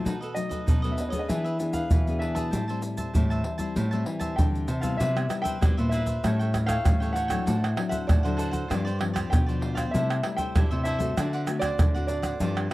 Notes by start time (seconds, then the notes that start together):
Already playing: F#3 A3 D#4
0.05 B2 D#4 A4 B4 D#5, pandeiro, shaker, surdo
0.21 A4 B4 D#5, pandeiro, shaker
0.35 F#3 A3 D#4 D#5, muted cavaquinho stroke, pandeiro, shaker
0.49 A4 B4 D#5, pandeiro, shaker, surdo
0.66 F#2 B2 D#4 A4 B4 D#5, pandeiro, shaker, surdo
0.82 F#3 A3 D#4 A4 B4 D#5, pandeiro, shaker
0.92 E5
0.98 D#5, pandeiro, shaker
1.09 B4 C#5 D#5, pandeiro, shaker, surdo
1.13 B3 D4 G#4 A4
1.19 D#5
1.28 E3 D4 G#4 B4 E5, pandeiro, shaker, surdo
1.44 G#4 B4 E5, pandeiro, shaker
1.59 B3 D4 G#4, muted cavaquinho stroke, pandeiro, shaker
1.73 G#4 B4 F5, pandeiro, shaker, surdo
1.91 B2 E3, pandeiro, shaker, surdo
2.07 B3 D4 G#4, pandeiro, shaker
2.19 D4 G#4 B4 E5, pandeiro
2.35 G#4 B4 E5 A5, pandeiro, shaker, surdo
2.51 A2 G3 C4 E4 G4 C5 E5 A5, pandeiro, shaker, surdo
2.68 G3 C4 E4 C5 E5 A5, pandeiro, shaker
2.82 muted cavaquinho stroke, pandeiro, shaker
2.97 C5 E5 A5, pandeiro, shaker, surdo
3.14 A2 E3 G3 C4 E4 G4 C5 E5 A5, pandeiro, shaker, surdo
3.30 C5 E5 A5, pandeiro, shaker
3.44 pandeiro
3.58 G3 C4 E4 C5 E5 A5, pandeiro, shaker, surdo
3.76 A2 G4 C5 E5 A5, pandeiro, shaker, surdo
3.91 G3 C4 E4 C5 E5 A5, pandeiro, shaker
4.05 E3, muted cavaquinho stroke, pandeiro
4.19 C5 E5 A5, pandeiro, shaker, surdo
4.36 D3 E3 G3 C4 E4 G5, pandeiro, shaker, surdo
4.55 pandeiro, shaker
4.68 C3 G4 C5 E5 A5, pandeiro, shaker
4.81 G3 B3 E4 C5 E5 F5 A5, pandeiro, shaker, surdo
4.97 C3 E4 B4 C5 E5, pandeiro, shaker, surdo
5.02 E5
5.15 G3 B3 E4, pandeiro, tamborim, shaker
5.29 G3 B3 E4, muted cavaquinho stroke, pandeiro, tamborim, shaker
5.42 B4 E5 G5, pandeiro, shaker, surdo
5.46 C5
5.61 G2 G3 B3 E4 B4 C5 E5, pandeiro, tamborim, shaker, surdo
5.77 A#2 B4 C5 E5, pandeiro, shaker
5.89 E4 B4 C5 E5, pandeiro, shaker
5.94 E5
6.06 B4 C5 E5, pandeiro, shaker, surdo
6.23 A2 G3 C#4 E4 G4 A4 C#5 G5, pandeiro, tamborim, shaker, surdo
6.39 A4 C#5 G5, pandeiro, shaker
6.53 muted cavaquinho stroke, pandeiro, tamborim, shaker, surdo
6.66 A4 C#5 F5 G5, pandeiro, tamborim, shaker, surdo
6.84 A2 E3 G3 C#4 E4, pandeiro, tamborim, shaker, surdo
7.00 A4 C#5 G5, pandeiro, shaker
7.13 G4 A4 C#5 F#5 G5, pandeiro, shaker
7.28 F#3 C4 D4 A4 C#5 G5, pandeiro, tamborim, shaker, surdo
7.46 A2 D4 A4 C5 F#5, pandeiro, shaker, surdo
7.64 pandeiro, tamborim, shaker
7.76 F#3 C4 D4, muted cavaquinho stroke, pandeiro, tamborim
7.89 A4 C5 E5 F#5, pandeiro, shaker, surdo
8.07 A2 D4 A4 C5 D5 F#5, pandeiro, tamborim, shaker, surdo
8.23 D3 F#3 C4 D4 A4 C5 F#5, pandeiro, shaker
8.37 D4 A4 C5 F#5, pandeiro, shaker
8.51 A4 C5 F#5, pandeiro, shaker, surdo
8.68 G2 F3 C4 D4 F4 G4 C5 D5, pandeiro, tamborim, shaker, surdo
8.85 G4 C5 D5, pandeiro, shaker
8.99 F3 C4 D4, muted cavaquinho stroke, pandeiro, tamborim
9.14 G4 C5 D5, pandeiro, tamborim, shaker, surdo
9.30 B2 G5, pandeiro, tamborim, shaker, surdo
9.46 F3 D4 G4 C5 D5, pandeiro, shaker
9.61 F4 G4 C5 D5, pandeiro
9.75 G4 C5 D5 F5, pandeiro, tamborim, shaker, surdo
9.91 C3 G3 A3 E4 A4 E5, pandeiro, shaker, surdo
9.95 C5 E5
10.10 pandeiro, tamborim, shaker
10.23 G3 A3 E4, muted cavaquinho stroke, pandeiro, tamborim
10.37 A4 C5 E5 G5, pandeiro, shaker, surdo
10.55 G2 G3 E4 A4 C5 E5, pandeiro, tamborim, shaker, surdo
10.71 C3 G3 A3 E4 A4 C5 E5, pandeiro, shaker
10.84 E4 A4 C5 E5, pandeiro, shaker
10.98 A3 C4 F#4 A4 C5 E5, pandeiro, shaker, surdo
11.17 D3 D4 C5 D5 F#5, pandeiro, tamborim, shaker, surdo
11.33 C5 D5 F#5, pandeiro, shaker
11.47 A3 C4 F#4, muted cavaquinho stroke, pandeiro, tamborim, shaker
11.59 D5 F#5, pandeiro, tamborim, shaker, surdo
11.64 C5
11.79 A2 D3, pandeiro, tamborim, shaker, surdo
11.95 A3 C4 F#4 C5 D5 F#5, pandeiro, shaker
12.07 D4 C5 D5 F#5, pandeiro, shaker
12.22 C5 D5 F#5, pandeiro, tamborim, shaker, surdo
12.39 G2 F3 C4 D4 F4 G4 C5 D5, pandeiro, shaker, surdo
12.57 pandeiro, tamborim, shaker
12.70 muted cavaquinho stroke